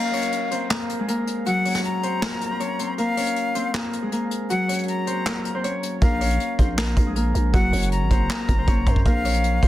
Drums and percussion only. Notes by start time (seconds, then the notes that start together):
0.13 closed hi-hat, open hi-hat
0.23 closed hi-hat
0.32 closed hi-hat
0.51 closed hi-hat
0.70 snare, clap
0.89 closed hi-hat
1.08 closed hi-hat
1.27 closed hi-hat
1.46 closed hi-hat
1.65 closed hi-hat, open hi-hat
1.75 snare, closed hi-hat
1.84 closed hi-hat
2.03 closed hi-hat
2.22 snare, clap
2.41 closed hi-hat
2.60 closed hi-hat
2.79 closed hi-hat
2.98 closed hi-hat
3.17 closed hi-hat, open hi-hat
3.27 closed hi-hat
3.36 closed hi-hat
3.55 closed hi-hat
3.74 snare, clap
3.93 closed hi-hat
4.12 closed hi-hat
4.31 closed hi-hat
4.50 closed hi-hat
4.69 closed hi-hat, open hi-hat
4.74 closed hi-hat
4.78 closed hi-hat
4.83 closed hi-hat
4.88 closed hi-hat
5.07 closed hi-hat
5.26 snare, clap
5.45 closed hi-hat
5.64 closed hi-hat
5.83 closed hi-hat
6.02 kick, closed hi-hat
6.21 closed hi-hat, open hi-hat
6.30 closed hi-hat
6.40 closed hi-hat
6.59 kick, closed hi-hat
6.78 snare, clap
6.97 kick, closed hi-hat
7.16 closed hi-hat
7.35 closed hi-hat
7.54 kick, closed hi-hat
7.73 closed hi-hat, open hi-hat
7.82 closed hi-hat
7.92 closed hi-hat
8.11 kick, closed hi-hat
8.30 snare, clap
8.49 kick, closed hi-hat
8.68 kick, closed hi-hat
8.87 kick, closed hi-hat
8.96 kick
9.06 kick, closed hi-hat
9.25 closed hi-hat, open hi-hat
9.34 closed hi-hat
9.44 closed hi-hat
9.63 kick, closed hi-hat